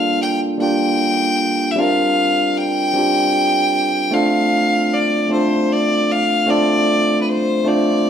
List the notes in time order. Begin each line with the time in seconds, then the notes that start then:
Already playing: G3 A#3 D4 F4 A4 F5
0.22 G5
0.58 G3 A#3 D4 F4 G5
0.63 G4
1.71 E5
1.76 G3 C4 D4 F4 F5
1.80 A#4
2.57 G5
2.93 G3 C4 D4 F4
2.98 G4
4.11 A3 C4 D4 F4 F5
4.15 A4
4.93 D5
5.28 A3 C4 D4 F4 C5
5.33 A4
5.72 D5
6.11 F5
6.46 A3 C4 D4 F4
6.51 A4 D5
7.22 B4
7.29 C5
7.64 A3 C4 D4 F4 D5
7.69 C5